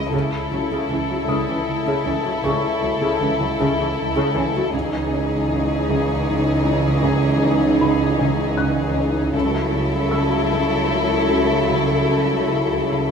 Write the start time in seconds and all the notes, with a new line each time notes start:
0.12 C#2 C#3 E4 A4
0.51 C#2 C#3 F#3 C#4
0.71 C#3
0.90 C#2 C#3 E3
1.10 C#3 F#3
1.28 C#2 C#3 D#6
1.47 C#3 E3
1.67 C#3
1.86 C#3
2.04 C#2 C#3 E3 C#4
2.24 C#3 F#3
2.43 C#2 C#3 C#6
2.82 C#2 C#3 F#3 C#4
3.01 C#3
3.20 C#2 C#3 E3
3.39 C#3 F#3
3.58 C#2 C#3
3.78 C#3 E3
3.97 C#3
4.16 C#3
4.35 C#2 C#3 E3 C#4 G#5
4.55 C#3 F#3
4.73 C#2 C#3 E3 D#4 G#4
5.12 C#4
5.51 C#3
5.89 C#3
6.27 C#3
6.65 C#4
7.03 C#3
7.42 C#4
7.81 C#3 B5
8.19 C#3
8.57 C#3 F#6
8.95 C#4
9.33 C#2 C#3 F#3 E4 A4
9.72 C#4
10.11 C#3 E6
10.50 C#3
10.90 C#3
11.30 C#4
11.70 C#3
12.11 C#4
12.52 C#3
12.91 C#3